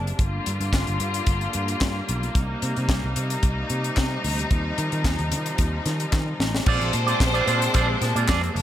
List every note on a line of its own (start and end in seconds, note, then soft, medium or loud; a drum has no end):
0.00 0.12 F#1 medium
0.00 0.15 C3 medium
0.00 0.17 G#3 medium
0.00 0.17 A#3 medium
0.00 0.17 D4 medium
0.07 closed hi-hat soft
0.18 0.38 G1 medium
0.18 2.33 D3 medium
0.18 6.63 G3 medium
0.18 4.47 A#3 medium
0.18 2.32 F4 medium
0.18 kick loud
0.18 closed hi-hat medium
0.46 0.57 G2 loud
0.46 closed hi-hat medium
0.61 0.69 G2 medium
0.61 closed hi-hat soft
0.73 0.83 G1 medium
0.73 kick medium
0.73 snare medium
0.73 clap medium
0.87 0.97 G1 medium
0.87 closed hi-hat soft
1.00 1.19 G2 loud
1.00 closed hi-hat medium
1.14 closed hi-hat medium
1.26 1.46 G1 medium
1.26 kick loud
1.26 closed hi-hat medium
1.41 closed hi-hat soft
1.53 1.74 G2 medium
1.53 closed hi-hat medium
1.68 closed hi-hat medium
1.81 2.00 G2 loud
1.81 kick loud
1.81 snare loud
1.81 clap medium
2.09 2.28 B1 medium
2.09 closed hi-hat medium
2.23 closed hi-hat soft
2.35 2.54 C2 medium
2.35 6.63 C3 medium
2.35 6.63 D#4 medium
2.35 kick loud
2.35 closed hi-hat medium
2.62 2.73 C3 medium
2.62 closed hi-hat medium
2.77 2.86 C3 medium
2.77 closed hi-hat soft
2.89 2.99 C2 medium
2.89 kick loud
2.89 snare medium
2.89 clap medium
3.04 3.13 C2 medium
3.16 3.36 C3 loud
3.16 closed hi-hat medium
3.30 closed hi-hat medium
3.43 3.63 C2 loud
3.43 kick loud
3.43 closed hi-hat medium
3.70 3.89 C3 medium
3.70 closed hi-hat medium
3.84 closed hi-hat soft
3.97 4.17 C3 loud
3.97 kick medium
3.97 snare loud
3.97 clap medium
4.24 4.44 D2 medium
4.24 open hi-hat medium
4.39 closed hi-hat soft
4.51 4.70 D#2 loud
4.51 6.65 F3 medium
4.51 kick loud
4.51 closed hi-hat medium
4.78 4.88 D#3 loud
4.78 closed hi-hat medium
4.92 5.02 D#3 medium
4.92 closed hi-hat soft
5.04 5.15 D#2 medium
5.04 kick loud
5.04 snare medium
5.04 clap medium
5.19 5.33 D#2 loud
5.19 closed hi-hat soft
5.31 5.51 D#3 medium
5.31 closed hi-hat medium
5.46 closed hi-hat medium
5.58 5.78 D#2 loud
5.58 kick loud
5.58 closed hi-hat medium
5.86 6.05 D#3 loud
5.86 snare soft
5.86 closed hi-hat medium
6.00 closed hi-hat soft
6.13 6.32 D#3 loud
6.13 kick loud
6.13 snare soft
6.13 clap medium
6.40 6.59 A1 medium
6.40 snare medium
6.55 snare medium
6.65 6.77 A#1 loud
6.65 8.62 C3 medium
6.65 8.62 G#3 medium
6.65 8.62 A#3 medium
6.65 8.52 C4 loud
6.65 6.92 C4 medium
6.65 8.62 D4 loud
6.65 6.92 F4 medium
6.65 6.93 G#4 medium
6.65 8.52 C5 loud
6.65 6.93 D5 loud
6.65 kick loud
6.65 crash loud
6.81 6.90 A#1 medium
6.81 closed hi-hat soft
6.93 7.13 A#2 loud
6.93 muted clean electric guitar stroke soft
6.93 closed hi-hat medium
7.07 7.19 C4 medium
7.07 7.19 F4 medium
7.07 7.20 G#4 medium
7.07 7.21 D5 medium
7.07 closed hi-hat soft
7.20 7.40 A#1 loud
7.20 muted clean electric guitar stroke soft
7.20 kick loud
7.20 snare loud
7.20 clap medium
7.34 7.46 C4 medium
7.34 7.46 F4 medium
7.34 7.47 G#4 medium
7.34 7.48 D5 loud
7.34 closed hi-hat soft
7.47 7.67 A#2 loud
7.47 7.64 C4 medium
7.47 7.61 F4 medium
7.47 7.61 G#4 medium
7.47 7.60 D5 medium
7.47 closed hi-hat medium
7.61 muted clean electric guitar stroke medium
7.61 closed hi-hat medium
7.74 7.94 A#1 loud
7.74 7.95 C4 medium
7.74 7.89 F4 medium
7.74 7.88 G#4 medium
7.74 7.87 D5 loud
7.74 kick loud
7.74 closed hi-hat medium
7.89 muted clean electric guitar stroke soft
8.01 8.12 A#2 loud
8.01 muted clean electric guitar stroke soft
8.01 snare soft
8.01 closed hi-hat medium
8.16 8.25 A#2 loud
8.16 8.26 C4 medium
8.16 8.27 F4 medium
8.16 8.27 G#4 medium
8.16 8.28 D5 medium
8.16 closed hi-hat medium
8.27 8.48 F2 loud
8.27 8.49 C4 medium
8.27 8.43 F4 medium
8.27 8.42 G#4 medium
8.27 8.41 D5 loud
8.27 kick loud
8.27 snare loud
8.27 clap loud
8.42 muted clean electric guitar stroke soft
8.42 closed hi-hat soft
8.55 8.62 F#1 loud
8.55 muted clean electric guitar stroke soft
8.55 open hi-hat medium